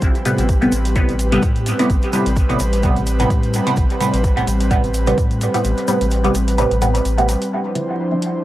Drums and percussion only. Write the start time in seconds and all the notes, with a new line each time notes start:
0.02 kick, closed hi-hat, shaker
0.15 closed hi-hat, shaker
0.25 closed hi-hat, shaker
0.38 closed hi-hat, shaker
0.49 kick, closed hi-hat, shaker
0.62 closed hi-hat, shaker
0.72 closed hi-hat, shaker
0.85 closed hi-hat, shaker
0.96 kick, closed hi-hat, shaker
1.09 closed hi-hat, shaker
1.19 closed hi-hat, shaker
1.32 closed hi-hat, shaker
1.42 kick, closed hi-hat, shaker
1.56 closed hi-hat, shaker
1.66 closed hi-hat, shaker
1.79 closed hi-hat, shaker
1.90 kick, closed hi-hat, shaker
2.02 closed hi-hat, shaker
2.13 closed hi-hat, shaker
2.26 closed hi-hat, shaker
2.36 kick, closed hi-hat, shaker
2.50 closed hi-hat, shaker
2.59 closed hi-hat, shaker
2.73 closed hi-hat, shaker
2.83 kick, closed hi-hat, shaker
2.96 closed hi-hat, shaker
3.07 closed hi-hat, shaker
3.19 closed hi-hat, shaker
3.30 kick, closed hi-hat, shaker
3.43 closed hi-hat, shaker
3.54 closed hi-hat, shaker
3.67 closed hi-hat, shaker
3.76 kick, closed hi-hat, shaker
3.90 closed hi-hat, shaker
4.01 closed hi-hat, shaker
4.14 closed hi-hat, shaker
4.24 kick, closed hi-hat, shaker
4.37 closed hi-hat, shaker
4.47 closed hi-hat, shaker
4.60 closed hi-hat, shaker
4.71 kick, closed hi-hat, shaker
4.84 closed hi-hat, shaker
4.94 closed hi-hat, shaker
5.07 closed hi-hat, shaker
5.18 kick, closed hi-hat, shaker
5.31 closed hi-hat, shaker
5.41 closed hi-hat, shaker
5.54 closed hi-hat, shaker
5.64 closed hi-hat, shaker
5.77 closed hi-hat, shaker
5.88 closed hi-hat, shaker
6.01 closed hi-hat, shaker
6.11 closed hi-hat, shaker
6.24 closed hi-hat, shaker
6.35 closed hi-hat, shaker
6.48 closed hi-hat, shaker
6.58 closed hi-hat, shaker
6.71 closed hi-hat, shaker
6.82 closed hi-hat, shaker
6.95 closed hi-hat, shaker
7.05 closed hi-hat, shaker
7.18 closed hi-hat, shaker
7.29 closed hi-hat, shaker
7.42 closed hi-hat, shaker
7.75 closed hi-hat
8.22 closed hi-hat